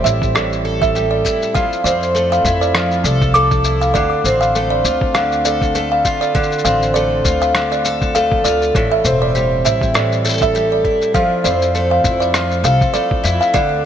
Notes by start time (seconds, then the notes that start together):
Already playing: A2 G3 C4
0.04 A1 E4 E5, shaker
0.22 kick, shaker
0.35 A2 D5, cross-stick, shaker
0.53 shaker
0.65 A4
0.82 E5, kick, shaker
0.95 G3, shaker
1.11 D5
1.25 E4, kick, shaker
1.42 shaker
1.55 F3 F5, kick, shaker
1.73 shaker
1.84 F2 C4 D5, shaker
2.03 shaker
2.15 A3, shaker
2.32 F5, shaker
2.44 F2 E4, kick, shaker
2.61 D5, shaker
2.75 F3, cross-stick, shaker
2.91 shaker
3.04 C2 A4 D5, shaker
3.21 kick, shaker
3.34 A3 D6, shaker
3.51 kick, shaker
3.64 E4, shaker
3.81 F5, shaker
3.94 D2 D3 D5, kick, shaker
4.24 A1 C4, shaker
4.41 F5, shaker
4.55 A3, shaker
4.70 D5
4.84 D2 F4, shaker
5.01 kick
5.14 D3 F5, cross-stick, shaker
5.32 shaker
5.45 A4 D5, shaker
5.61 kick, shaker
5.75 A3, shaker
5.92 F5
6.05 F4, kick, shaker
6.21 D5, shaker
6.35 D3, kick, shaker
6.43 shaker
6.52 shaker
6.59 shaker
6.65 A1 C4 F5, shaker
6.82 shaker
6.94 A3 D5, shaker
7.25 D2 F4, kick, shaker
7.42 F5, shaker
7.55 D3, cross-stick, shaker
7.72 D5, shaker
7.85 A4, shaker
8.02 kick, shaker
8.15 A3 F5, shaker
8.32 kick
8.44 D2 F4 D5, shaker
8.62 shaker
8.75 A1 A2, kick, shaker
8.92 E5
9.05 E1 C4, shaker
9.22 D5
9.35 G3, shaker
9.65 A1 E4 E5, shaker
9.81 kick, shaker
9.94 A2 D5, cross-stick, shaker
10.12 shaker
10.25 A4, shaker
10.29 shaker
10.33 shaker
10.38 kick, shaker
10.42 E5, shaker
10.55 G3, shaker
10.72 D5
10.85 E4, kick
11.02 shaker
11.14 F3 F5, kick, shaker
11.44 F2 C4 D5, shaker
11.62 shaker
11.75 A3, shaker
11.91 F5
12.04 F2 E4, kick, shaker
12.20 D5, shaker
12.34 F3, cross-stick, shaker
12.51 shaker
12.64 C2 A4 F5, shaker
12.81 kick, shaker
12.94 A3 D5, shaker
13.11 kick
13.24 F2 E4, shaker
13.41 F5, shaker
13.54 D2 D3 D5, kick, shaker